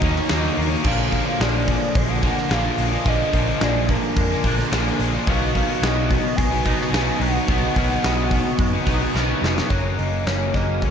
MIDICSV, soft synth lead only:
0, 0, Header, 1, 2, 480
1, 0, Start_track
1, 0, Tempo, 553506
1, 736, Time_signature, 4, 2, 24, 8
1, 9457, End_track
2, 0, Start_track
2, 0, Title_t, "Soft synth lead"
2, 0, Program_c, 0, 80
2, 0, Note_on_c, 0, 75, 86
2, 501, Note_off_c, 0, 75, 0
2, 753, Note_on_c, 0, 77, 111
2, 1224, Note_on_c, 0, 74, 106
2, 1237, Note_off_c, 0, 77, 0
2, 1706, Note_on_c, 0, 78, 115
2, 1719, Note_off_c, 0, 74, 0
2, 2186, Note_on_c, 0, 77, 127
2, 2199, Note_off_c, 0, 78, 0
2, 2660, Note_off_c, 0, 77, 0
2, 2670, Note_on_c, 0, 75, 109
2, 3152, Note_on_c, 0, 74, 103
2, 3165, Note_off_c, 0, 75, 0
2, 3379, Note_off_c, 0, 74, 0
2, 3384, Note_on_c, 0, 70, 81
2, 4304, Note_off_c, 0, 70, 0
2, 4573, Note_on_c, 0, 77, 102
2, 5053, Note_on_c, 0, 75, 103
2, 5066, Note_off_c, 0, 77, 0
2, 5514, Note_on_c, 0, 80, 124
2, 5527, Note_off_c, 0, 75, 0
2, 6222, Note_on_c, 0, 78, 109
2, 6235, Note_off_c, 0, 80, 0
2, 7920, Note_off_c, 0, 78, 0
2, 8402, Note_on_c, 0, 73, 105
2, 8652, Note_on_c, 0, 75, 99
2, 8665, Note_off_c, 0, 73, 0
2, 8896, Note_on_c, 0, 73, 102
2, 8909, Note_off_c, 0, 75, 0
2, 9145, Note_on_c, 0, 75, 91
2, 9158, Note_off_c, 0, 73, 0
2, 9394, Note_on_c, 0, 73, 85
2, 9407, Note_off_c, 0, 75, 0
2, 9457, Note_off_c, 0, 73, 0
2, 9457, End_track
0, 0, End_of_file